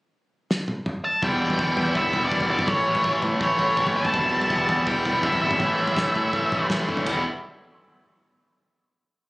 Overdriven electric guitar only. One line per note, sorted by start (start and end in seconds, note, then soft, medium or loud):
1.22 1.77 E2 medium
1.22 1.77 B2 medium
1.22 1.58 E3 medium
1.22 1.58 G3 medium
1.22 1.59 B3 medium
1.22 1.60 E4 medium
1.59 1.93 E3 medium
1.59 1.94 G3 medium
1.59 1.94 B3 medium
1.59 1.95 E4 medium
1.94 2.15 E3 medium
1.94 2.13 G3 medium
1.94 2.13 B3 medium
1.94 2.12 E4 medium
2.13 2.31 E3 medium
2.13 2.30 G3 medium
2.13 2.31 B3 medium
2.13 2.32 E4 medium
2.30 2.66 E2 medium
2.30 2.66 B2 medium
2.30 2.51 E3 medium
2.30 2.49 G3 loud
2.30 2.48 B3 medium
2.30 2.49 E4 medium
2.49 2.67 E3 medium
2.49 2.67 G3 medium
2.49 2.67 B3 medium
2.49 2.68 E4 medium
2.66 3.22 A2 medium
2.66 3.03 E3 medium
2.66 3.03 A3 medium
2.66 3.04 C#4 medium
2.66 3.05 E4 loud
3.03 3.39 E3 medium
3.03 3.39 A3 medium
3.03 3.40 C#4 medium
3.03 3.41 E4 medium
3.40 3.77 E3 medium
3.40 3.58 A3 medium
3.40 3.57 C#4 medium
3.40 3.57 E4 medium
3.57 3.77 A3 medium
3.57 3.77 C#4 medium
3.57 3.78 E4 medium
3.76 4.12 A2 medium
3.76 4.13 E3 medium
3.76 3.94 A3 medium
3.76 3.93 C#4 medium
3.76 3.93 E4 medium
3.94 4.13 A3 medium
3.94 4.12 C#4 medium
3.94 4.14 E4 medium
4.12 4.68 E2 medium
4.12 4.68 B2 medium
4.12 4.48 E3 medium
4.12 4.48 G3 medium
4.12 4.49 B3 medium
4.12 4.50 E4 medium
4.49 4.86 E3 medium
4.49 4.85 G3 medium
4.49 4.86 B3 medium
4.49 4.88 E4 medium
4.86 5.06 E3 medium
4.86 5.05 G3 medium
4.86 5.05 B3 medium
4.86 5.04 E4 medium
5.05 5.23 E3 medium
5.05 5.23 G3 medium
5.05 5.23 B3 medium
5.05 5.24 E4 medium
5.22 5.58 E2 medium
5.22 5.59 B2 medium
5.22 5.43 E3 medium
5.22 5.41 G3 medium
5.22 5.41 B3 medium
5.22 5.41 E4 medium
5.41 5.60 E3 medium
5.41 5.59 G3 medium
5.41 5.59 B3 medium
5.41 5.61 E4 medium
5.60 6.15 A2 medium
5.60 5.96 E3 medium
5.60 5.96 A3 medium
5.60 5.97 C#4 medium
5.60 5.97 E4 medium
5.97 6.32 E3 medium
5.97 6.32 A3 medium
5.97 6.33 C#4 medium
5.97 6.34 E4 medium
6.33 6.68 E3 medium
6.33 6.52 A3 medium
6.33 6.51 C#4 medium
6.33 6.50 E4 medium
6.51 6.69 A3 medium
6.51 6.70 C#4 medium
6.51 6.70 E4 medium
6.69 7.05 A2 medium
6.69 7.05 E3 medium
6.69 6.89 A3 medium
6.69 6.88 C#4 medium
6.69 6.87 E4 medium
6.88 7.06 A3 soft
6.88 7.06 C#4 medium
6.88 7.05 E4 medium
7.07 7.21 E2 medium
7.07 7.22 B2 medium
7.07 7.22 E3 medium
7.07 7.22 G3 medium
7.07 7.22 B3 medium
7.07 7.22 E4 loud